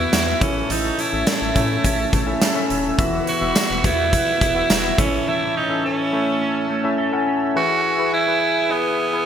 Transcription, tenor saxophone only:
Already playing: E4
0.42 C#4
0.71 D#4
1.00 E4
1.28 E4
3.29 F#4
3.85 E4
4.99 C#4
5.28 E4
5.57 D#4
5.86 C#4
7.57 F#4
8.14 E4
8.71 B3

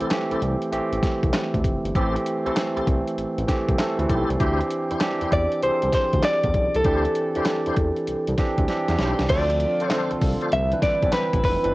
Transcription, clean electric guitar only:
5.33 D5
5.63 C5
5.94 C5
6.25 D5
6.76 A4
9.30 D5
9.92 C5
10.53 E5
10.83 D5
11.13 B4
11.45 B4

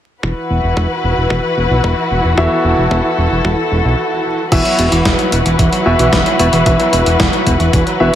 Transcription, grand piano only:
2.38 E3 B3 E4 F#4 E5
4.52 E3 B3 E4 F#4 E5
5.86 E3 B3 E4 F#4 E5
6.39 E3 B3 E4 F#4 E5
6.66 E3 B3 E4 F#4 E5
8.00 E3 B3 E4 F#4 E5

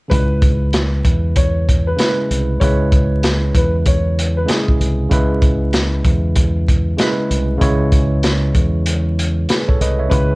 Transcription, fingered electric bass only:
0.12 C#2
1.05 E2
2.30 C2
2.62 C#2
3.55 E2
4.80 C2
5.11 C#2
6.05 E2
7.30 C2
7.62 C#2
8.55 E2
9.81 C2
10.12 C#2

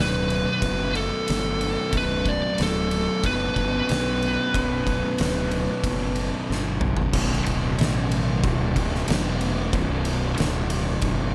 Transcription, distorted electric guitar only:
Already playing: B1 F#2 B2
0.61 B1 F#2 B2
1.92 B1 F#2 B2
3.24 B1 F#2 B2
4.54 B1 F#2 B2
5.84 B1 F#2 B2
7.13 B1 F#2 B2
8.76 B1 F#2 B2
9.08 B1 F#2 B2
9.73 B1 F#2 B2

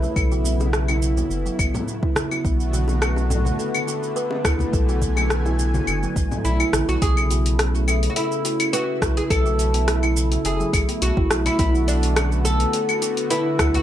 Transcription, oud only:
6.45 E4
6.89 F#4
7.02 G#4
8.10 F#4
8.16 E4
8.73 F#4
9.17 G#4
9.30 A4
10.46 G#4
11.02 F#4
11.46 E4
11.59 E4
11.88 D4
12.45 A4
13.30 E4
13.75 F#4

